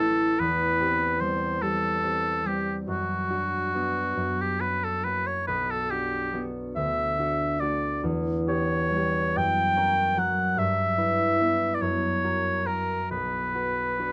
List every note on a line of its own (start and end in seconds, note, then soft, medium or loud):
0.00 0.42 A1 soft
0.00 0.43 A3 soft
0.00 0.43 C#4 soft
0.00 2.92 E4 soft
0.00 0.41 A4 medium
0.39 2.91 E2 soft
0.39 1.22 B4 medium
0.80 1.20 C4 soft
0.80 1.20 G4 soft
1.20 1.61 G3 soft
1.20 1.62 C4 soft
1.20 1.61 G4 soft
1.20 1.63 C5 medium
1.62 2.44 G3 soft
1.62 2.02 C4 soft
1.62 2.03 G4 soft
1.62 2.48 A4 medium
2.03 2.45 C4 soft
2.03 2.45 G4 soft
2.45 2.91 G3 soft
2.45 2.91 C4 soft
2.45 2.92 G4 soft
2.45 2.76 G4 soft
2.87 4.16 F#2 soft
2.87 4.42 F#4 medium
3.30 3.73 D4 soft
3.30 3.74 F#4 soft
3.74 4.20 B3 soft
3.74 4.21 D4 soft
3.74 4.59 F#4 soft
4.17 5.51 F#2 soft
4.41 4.62 G4 medium
4.60 5.04 C#4 soft
4.60 5.04 F#4 soft
4.60 4.85 B4 medium
4.84 5.06 A4 soft
5.04 5.51 A#3 soft
5.04 5.51 C#4 soft
5.04 5.90 F#4 soft
5.04 5.28 B4 medium
5.27 5.46 C#5 soft
5.47 6.80 B1 soft
5.47 5.72 B4 medium
5.70 5.92 A4 medium
5.90 6.32 D4 soft
5.90 6.33 F#4 soft
5.90 6.48 G4 medium
6.33 6.79 B3 soft
6.33 7.18 D4 soft
6.33 7.18 F#4 soft
6.75 8.06 D2 soft
6.75 7.61 E5 medium
7.19 7.60 D4 soft
7.19 7.61 F#4 soft
7.60 8.07 A3 soft
7.60 8.07 D4 soft
7.60 8.07 F#4 soft
7.60 8.03 D5 medium
8.03 9.39 E2 soft
8.47 8.92 C#4 soft
8.47 8.92 G4 medium
8.47 9.38 C#5 medium
8.90 9.40 G3 soft
8.90 9.76 C#4 soft
8.96 9.40 G4 soft
9.36 10.61 F#2 soft
9.36 10.20 G5 medium
9.77 10.16 C#4 soft
9.77 10.17 A#4 soft
10.17 10.61 F#3 soft
10.17 10.61 C#4 soft
10.17 10.62 A#4 soft
10.17 10.60 F#5 medium
10.57 11.84 G2 soft
10.57 11.76 E5 medium
10.98 11.39 E4 soft
10.98 11.39 B4 soft
11.40 11.85 B3 soft
11.40 11.85 E4 soft
11.40 11.85 B4 soft
11.74 11.83 D5 soft
11.81 13.14 F#2 soft
11.81 12.68 C#5 medium
12.24 12.66 F#4 soft
12.24 12.66 A#4 soft
12.66 13.14 C#4 soft
12.66 13.54 F#4 soft
12.66 13.10 A#4 medium
12.66 13.14 A#4 soft
13.10 14.12 B1 soft
13.10 14.12 B4 soft
13.55 13.98 F#4 soft
13.55 13.99 B4 soft
13.99 14.12 D4 soft
13.99 14.12 F#4 soft
13.99 14.12 B4 soft